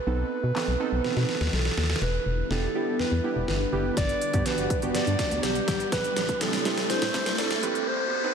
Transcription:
0.00 1.49 B4 loud
0.07 0.24 B1 loud
0.07 0.45 B3 medium
0.07 0.45 C4 medium
0.07 0.45 D#4 medium
0.07 0.45 A4 medium
0.43 0.52 B2 loud
0.55 0.75 B3 medium
0.55 0.75 C4 medium
0.55 0.75 D#4 medium
0.55 0.75 A4 medium
0.55 snare medium
0.55 clap loud
0.68 0.76 B1 medium
0.80 1.56 B3 medium
0.80 1.56 C4 medium
0.80 1.56 D#4 medium
0.80 1.56 A4 loud
0.92 1.01 B1 medium
1.04 1.09 B2 soft
1.04 snare medium
1.11 snare soft
1.17 1.25 B2 loud
1.17 snare medium
1.23 snare medium
1.29 snare medium
1.35 snare medium
1.41 1.49 D#2 medium
1.41 snare medium
1.47 snare medium
1.53 1.70 B1 medium
1.53 1.99 A4 medium
1.53 snare medium
1.59 snare medium
1.65 snare medium
1.71 snare medium
1.77 1.94 D#2 medium
1.77 snare medium
1.84 snare medium
1.90 snare loud
1.96 snare medium
2.02 2.19 E1 loud
2.02 5.88 D3 medium
2.02 7.83 G3 medium
2.02 3.95 B3 medium
2.02 7.83 D4 medium
2.02 3.95 E4 medium
2.02 2.47 B4 medium
2.02 snare soft
2.02 riser medium
2.26 2.43 E1 medium
2.50 2.68 E1 medium
2.50 2.70 B3 medium
2.50 2.70 D4 medium
2.50 2.70 E4 medium
2.50 2.70 G4 medium
2.50 3.01 A4 medium
2.50 snare medium
2.75 3.13 B3 medium
2.75 3.13 D4 medium
2.75 3.13 E4 medium
2.75 3.13 G4 medium
2.99 3.04 E2 soft
2.99 3.47 B4 medium
2.99 snare medium
3.12 3.20 E2 loud
3.24 3.62 B3 medium
3.24 3.62 D4 medium
3.24 3.62 E4 medium
3.24 3.62 G4 medium
3.36 3.44 E1 medium
3.48 3.65 G1 medium
3.48 3.94 B4 medium
3.48 snare medium
3.72 3.90 F#1 medium
3.72 3.97 B3 medium
3.72 3.97 D4 medium
3.72 3.97 E4 medium
3.72 3.97 G4 medium
3.97 4.14 G1 loud
3.97 5.90 B3 medium
3.97 4.47 D5 loud
3.97 5.90 F#5 medium
3.97 kick loud
3.97 snare medium
3.97 closed hi-hat medium
4.09 closed hi-hat medium
4.21 closed hi-hat medium
4.33 4.42 G2 loud
4.33 4.43 B3 medium
4.33 4.43 D4 medium
4.33 4.43 F#4 medium
4.33 4.43 G4 medium
4.33 kick medium
4.33 closed hi-hat medium
4.46 4.74 B3 medium
4.46 4.74 D4 medium
4.46 4.74 F#4 medium
4.46 4.75 G4 medium
4.46 4.80 B4 medium
4.46 snare medium
4.46 closed hi-hat medium
4.58 4.66 G1 medium
4.58 closed hi-hat medium
4.70 kick medium
4.70 closed hi-hat medium
4.82 4.91 G1 medium
4.82 5.58 B3 medium
4.82 5.58 D4 medium
4.82 5.59 F#4 medium
4.82 5.59 G4 medium
4.82 closed hi-hat medium
4.95 5.00 G2 soft
4.95 5.45 D5 loud
4.95 snare medium
4.95 closed hi-hat medium
5.07 5.15 G2 medium
5.07 closed hi-hat medium
5.19 kick medium
5.19 snare medium
5.19 closed hi-hat medium
5.31 5.40 D2 medium
5.31 closed hi-hat medium
5.43 5.60 B1 loud
5.43 5.92 G4 medium
5.43 snare medium
5.43 closed hi-hat medium
5.55 closed hi-hat soft
5.68 5.85 G#1 medium
5.68 kick medium
5.68 snare medium
5.68 closed hi-hat medium
5.80 closed hi-hat medium
5.92 6.09 A1 loud
5.92 8.34 C3 medium
5.92 8.34 A3 medium
5.92 7.85 E4 medium
5.92 6.43 B4 loud
5.92 kick loud
5.92 snare medium
5.92 closed hi-hat loud
6.04 closed hi-hat medium
6.17 6.33 A1 loud
6.17 snare medium
6.17 closed hi-hat medium
6.29 kick medium
6.29 closed hi-hat medium
6.41 6.58 A1 medium
6.41 6.60 C4 medium
6.41 6.60 E4 medium
6.41 6.60 G4 medium
6.41 6.91 A4 loud
6.41 6.60 A4 medium
6.41 snare loud
6.41 closed hi-hat medium
6.53 snare loud
6.53 closed hi-hat soft
6.65 7.03 C4 medium
6.65 7.03 E4 medium
6.65 7.03 G4 medium
6.65 7.03 A4 medium
6.65 snare loud
6.65 closed hi-hat medium
6.77 snare loud
6.77 closed hi-hat medium
6.90 6.95 A2 soft
6.90 7.38 C5 loud
6.90 snare loud
6.90 closed hi-hat medium
7.02 7.10 A2 medium
7.02 snare loud
7.02 closed hi-hat soft
7.14 7.52 C4 medium
7.14 7.52 E4 medium
7.14 7.52 G4 medium
7.14 7.52 A4 medium
7.14 kick medium
7.14 snare loud
7.14 closed hi-hat medium
7.26 7.35 B1 medium
7.26 snare loud
7.26 closed hi-hat medium
7.38 7.55 C2 loud
7.38 7.89 A4 loud
7.38 snare loud
7.38 closed hi-hat medium
7.50 snare loud
7.50 closed hi-hat medium
7.63 7.80 A#1 medium
7.63 7.87 C4 medium
7.63 7.87 E4 medium
7.63 7.87 G4 medium
7.63 7.87 B4 medium
7.63 closed hi-hat medium
7.75 closed hi-hat medium
7.87 8.34 B2 medium
7.87 8.34 D#4 medium
7.87 8.34 F#4 loud
7.87 8.34 C5 loud
8.24 8.33 C4 medium
8.24 8.33 D#4 medium
8.24 8.33 A4 medium
8.24 8.34 B4 loud

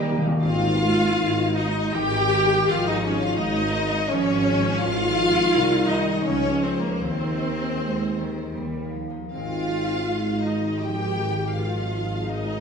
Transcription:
0.00 0.16 D#2 medium
0.00 0.17 D#2 medium
0.00 0.45 D#3 medium
0.00 0.09 D#3 medium
0.00 0.15 G3 medium
0.00 0.45 G3 soft
0.00 0.21 A#3 medium
0.00 0.45 A#3 soft
0.00 0.20 D#4 medium
0.00 0.22 D#4 soft
0.00 0.19 D#4 soft
0.00 0.20 G4 medium
0.00 0.17 A#4 soft
0.00 2.71 D#5 soft
0.10 0.18 D#3 medium
0.19 0.26 D#3 medium
0.23 0.34 D#3 loud
0.23 0.93 D#4 soft
0.42 1.09 G#1 medium
0.42 1.10 G#1 medium
0.42 2.68 G#2 medium
0.42 0.78 C4 medium
0.42 1.52 F4 loud
0.42 1.52 F5 medium
0.42 1.53 F5 medium
0.69 1.70 G#3 medium
0.80 1.94 G#3 medium
0.94 1.43 D#4 soft
1.18 1.85 G#1 medium
1.18 1.86 G#1 medium
1.18 2.18 C4 medium
1.45 2.71 D#4 soft
1.57 1.95 D#4 medium
1.57 1.94 D#5 medium
1.71 2.92 G#3 soft
1.94 2.60 G#1 medium
1.94 2.68 D#3 medium
1.94 2.44 D#3 soft
1.94 2.69 G4 loud
1.94 2.68 G5 medium
1.94 2.67 G5 medium
2.19 2.71 C4 soft
2.45 2.71 D#3 soft
2.68 3.31 G#1 medium
2.68 3.32 G#1 medium
2.68 4.83 G#2 medium
2.68 3.40 F3 medium
2.68 2.86 F4 medium
2.68 2.86 F5 medium
2.68 2.87 F5 medium
2.87 3.04 D#4 medium
2.87 3.04 D#5 medium
2.87 3.05 D#5 medium
2.93 3.87 G#3 soft
3.04 3.22 C#4 medium
3.04 3.21 C#5 medium
3.04 3.22 C#5 medium
3.16 3.63 F4 soft
3.21 3.40 F4 medium
3.21 3.39 F5 medium
3.38 4.02 G#1 medium
3.38 4.11 G#3 medium
3.38 4.35 C#4 medium
3.38 4.09 D#4 medium
3.38 4.09 D#5 medium
3.38 4.10 D#5 medium
3.64 4.86 F4 medium
3.88 5.06 G#3 soft
4.09 4.73 G#1 medium
4.09 4.74 G#1 medium
4.09 5.50 F3 medium
4.09 4.58 F3 soft
4.09 4.82 C#4 medium
4.09 4.81 C#5 medium
4.09 4.82 C#5 medium
4.36 4.86 C#4 medium
4.59 4.85 F3 medium
4.80 5.48 G#1 medium
4.80 5.49 G#1 medium
4.80 5.88 F4 loud
4.80 5.87 F5 medium
4.80 5.86 F5 medium
4.84 6.29 G#2 medium
5.08 6.00 G#3 soft
5.30 5.76 D#4 soft
5.52 6.24 C2 medium
5.52 5.87 C3 medium
5.52 6.50 C4 medium
5.78 6.29 D#4 soft
5.86 6.25 D#3 medium
5.86 6.26 D#4 medium
5.86 6.24 D#5 medium
5.86 6.26 D#5 medium
6.01 8.60 G#3 soft
6.25 7.01 C#2 medium
6.25 7.00 C#2 medium
6.25 7.04 C#3 medium
6.25 7.01 F3 medium
6.25 6.63 C#4 medium
6.25 6.63 C#5 medium
6.25 6.62 C#5 medium
6.51 6.76 C4 soft
6.62 6.82 C4 medium
6.62 6.81 C5 medium
6.62 6.82 C5 medium
6.77 7.27 C4 soft
6.77 7.05 F4 soft
6.77 7.00 A#4 medium
6.81 7.01 A#3 medium
6.81 7.01 A#4 medium
7.00 8.55 D#2 medium
7.00 8.54 D#2 medium
7.00 7.71 D#3 medium
7.00 8.14 D#3 medium
7.00 8.56 D#3 medium
7.00 8.57 C4 medium
7.00 8.56 C5 medium
7.00 8.57 C5 medium
7.28 8.30 C4 soft
7.55 8.04 G#4 soft
7.79 8.15 G#3 medium
7.79 9.09 D#4 soft
8.05 8.60 G#4 soft
8.18 8.56 D#3 medium
8.31 8.60 C4 soft
8.55 9.12 D#2 soft
8.55 9.37 D#3 soft
8.55 8.95 G3 medium
8.84 9.08 A#3 soft
8.94 9.33 F3 soft
9.10 9.38 A#3 soft
9.10 9.84 D#4 soft
9.33 12.60 G#1 soft
9.33 12.60 G#1 medium
9.33 11.54 G#2 soft
9.33 10.04 C4 medium
9.33 10.41 F4 medium
9.33 10.41 F5 medium
9.60 10.58 G#3 soft
9.85 10.34 D#4 soft
10.09 10.81 G#3 medium
10.09 11.06 C4 soft
10.35 11.57 D#4 soft
10.45 10.81 D#4 medium
10.45 10.81 D#5 medium
10.45 10.81 D#5 soft
10.59 11.78 G#3 soft
10.81 11.29 D#3 soft
10.81 11.17 F3 soft
10.81 11.53 G4 medium
10.81 11.53 G5 medium
10.81 11.54 G5 medium
11.07 11.57 C4 soft
11.17 11.53 D#3 soft
11.30 11.57 D#3 soft
11.54 12.60 G#2 soft
11.54 12.27 F3 medium
11.54 12.29 F4 medium
11.54 12.28 F5 medium
11.54 12.27 F5 medium
11.79 12.60 G#3 soft
12.04 12.51 G#4 soft
12.27 12.60 G#3 medium
12.27 12.60 C#4 soft
12.27 12.60 D#4 medium
12.27 12.60 D#5 medium
12.31 12.60 D#5 medium
12.52 12.60 G#4 soft

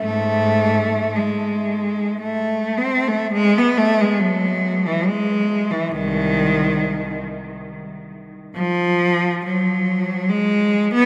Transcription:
0.03 1.11 G#2 medium
0.03 1.13 A3 loud
1.15 2.20 G#3 medium
2.21 2.76 A3 medium
2.78 3.09 C4 medium
3.08 3.34 A3 medium
3.33 3.56 G#3 loud
3.58 3.80 B3 medium
3.77 4.00 A3 loud
4.01 4.22 G#3 medium
4.19 4.85 F#3 medium
4.87 5.08 E3 medium
5.06 5.70 G#3 medium
5.70 5.92 E3 medium
5.91 7.18 C2 medium
5.91 7.22 D#3 medium
8.56 9.41 F3 loud
9.45 10.29 F#3 medium
10.29 10.91 G#3 medium
10.94 11.05 B3 loud

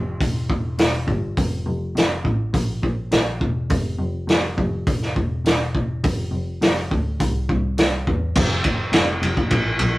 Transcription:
0.21 0.39 E1 medium
0.21 kick loud
0.21 open hi-hat soft
0.50 0.68 E1 medium
0.50 kick medium
0.79 0.97 E1 medium
0.79 snare loud
0.79 open hi-hat medium
1.08 1.26 G1 medium
1.08 kick medium
1.37 1.56 F1 loud
1.37 kick loud
1.37 open hi-hat medium
1.66 1.85 F1 medium
1.96 2.14 F1 medium
1.96 snare loud
1.96 open hi-hat soft
2.25 2.43 A1 medium
2.25 kick medium
2.54 2.72 A#1 medium
2.54 kick loud
2.54 open hi-hat soft
2.83 3.01 A#1 medium
2.83 kick medium
3.12 3.30 A#1 medium
3.12 snare loud
3.12 open hi-hat medium
3.41 3.59 E1 medium
3.41 kick medium
3.70 3.89 F1 medium
3.70 kick loud
3.70 open hi-hat soft
3.99 4.17 F1 medium
4.28 4.46 F1 medium
4.28 snare loud
4.28 open hi-hat soft
4.58 4.76 F1 medium
4.58 kick medium
4.87 5.06 E1 medium
4.87 kick loud
4.87 open hi-hat soft
5.02 snare soft
5.16 5.35 E1 medium
5.16 kick medium
5.45 5.63 E1 medium
5.45 snare loud
5.45 open hi-hat soft
5.75 5.93 E1 medium
5.75 kick medium
6.04 6.22 F1 loud
6.04 kick loud
6.04 open hi-hat medium
6.32 6.50 F1 medium
6.62 6.80 F1 medium
6.62 snare loud
6.62 open hi-hat soft
6.91 7.09 D2 medium
6.91 kick medium
7.20 7.38 C2 medium
7.20 kick medium
7.20 open hi-hat medium
7.49 7.67 C2 medium
7.49 kick medium
7.78 7.96 C2 medium
7.78 snare loud
7.78 open hi-hat medium
8.07 8.25 E2 medium
8.07 kick medium
8.35 8.79 F1 loud
8.35 kick loud
8.35 crash loud
8.64 kick medium
8.64 ride medium
8.93 9.14 F1 medium
8.93 snare loud
8.93 ride loud
9.22 9.44 F1 medium
9.22 ride medium
9.37 kick medium
9.51 9.72 A#1 medium
9.51 kick medium
9.51 ride loud
9.79 9.98 A#1 loud
9.79 ride medium

